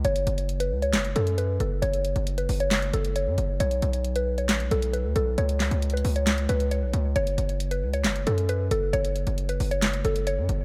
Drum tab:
HH |x--x--x--x--x--x-----x--x--x--x--x--x-----x-----|x--x--x--x--x--x--o--x--x--x--x--x--x-----x-----|x--x--x--x--x--x-----x--x--x--x--x--x-----x-----|x--x--x--x--x-x-x-o--x--x--x--x--x--x-----x-----|
CP |------------------------x-----------------------|------------------------x-----------------------|------------------------x-----------------------|------x-----------------x-----------------------|
SD |------------------------o-----------------------|------------------------o-----------------------|------------------------o-----------------------|------o-----------------o-----------------------|

HH |x--x--x--x--x--x-----x--x--x--x--x--x-----x-----|x--x--x--x--x--x--o--x--x--x--x--x--x-----x-----|
CP |------------------------x-----------------------|------------------------x-----------------------|
SD |------------------------o-----------------------|------------------------o-----------------------|